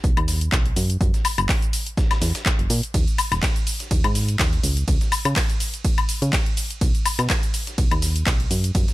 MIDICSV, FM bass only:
0, 0, Header, 1, 2, 480
1, 0, Start_track
1, 0, Tempo, 483871
1, 998, Time_signature, 4, 2, 24, 8
1, 8864, End_track
2, 0, Start_track
2, 0, Title_t, "FM bass"
2, 0, Program_c, 0, 39
2, 38, Note_on_c, 0, 35, 93
2, 150, Note_off_c, 0, 35, 0
2, 170, Note_on_c, 0, 39, 106
2, 492, Note_off_c, 0, 39, 0
2, 518, Note_on_c, 0, 35, 89
2, 725, Note_off_c, 0, 35, 0
2, 758, Note_on_c, 0, 42, 97
2, 965, Note_off_c, 0, 42, 0
2, 998, Note_on_c, 0, 42, 101
2, 1110, Note_off_c, 0, 42, 0
2, 1370, Note_on_c, 0, 30, 102
2, 1462, Note_off_c, 0, 30, 0
2, 2198, Note_on_c, 0, 40, 99
2, 2310, Note_off_c, 0, 40, 0
2, 2570, Note_on_c, 0, 30, 88
2, 2662, Note_off_c, 0, 30, 0
2, 2678, Note_on_c, 0, 46, 107
2, 2790, Note_off_c, 0, 46, 0
2, 2918, Note_on_c, 0, 39, 102
2, 3030, Note_off_c, 0, 39, 0
2, 3290, Note_on_c, 0, 27, 103
2, 3382, Note_off_c, 0, 27, 0
2, 3879, Note_on_c, 0, 39, 94
2, 3990, Note_off_c, 0, 39, 0
2, 4010, Note_on_c, 0, 44, 107
2, 4332, Note_off_c, 0, 44, 0
2, 4358, Note_on_c, 0, 39, 90
2, 4565, Note_off_c, 0, 39, 0
2, 4598, Note_on_c, 0, 37, 95
2, 4805, Note_off_c, 0, 37, 0
2, 4838, Note_on_c, 0, 37, 101
2, 4950, Note_off_c, 0, 37, 0
2, 5210, Note_on_c, 0, 49, 104
2, 5302, Note_off_c, 0, 49, 0
2, 6170, Note_on_c, 0, 49, 87
2, 6262, Note_off_c, 0, 49, 0
2, 6759, Note_on_c, 0, 35, 102
2, 6871, Note_off_c, 0, 35, 0
2, 7130, Note_on_c, 0, 47, 104
2, 7222, Note_off_c, 0, 47, 0
2, 7719, Note_on_c, 0, 35, 91
2, 7830, Note_off_c, 0, 35, 0
2, 7851, Note_on_c, 0, 39, 105
2, 8172, Note_off_c, 0, 39, 0
2, 8199, Note_on_c, 0, 35, 92
2, 8406, Note_off_c, 0, 35, 0
2, 8439, Note_on_c, 0, 42, 94
2, 8645, Note_off_c, 0, 42, 0
2, 8679, Note_on_c, 0, 42, 103
2, 8791, Note_off_c, 0, 42, 0
2, 8864, End_track
0, 0, End_of_file